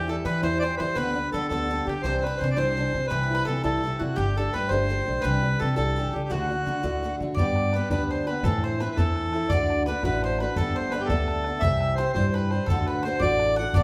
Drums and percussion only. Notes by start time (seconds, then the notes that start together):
7.37 bodhran
7.56 bodhran
7.73 bodhran
7.90 bodhran
8.11 bodhran
8.27 bodhran
8.43 bodhran
8.63 bodhran
8.80 bodhran
8.97 bodhran
9.16 bodhran
9.33 bodhran
9.50 bodhran
9.70 bodhran
10.03 bodhran
10.23 bodhran
10.38 bodhran
10.56 bodhran
10.76 bodhran
10.92 bodhran
11.09 bodhran
11.28 bodhran
11.44 bodhran
11.62 bodhran
11.81 bodhran
11.98 bodhran
12.15 bodhran
12.35 bodhran
12.51 bodhran
12.67 bodhran
12.87 bodhran
13.03 bodhran
13.20 bodhran
13.40 bodhran
13.57 bodhran
13.73 bodhran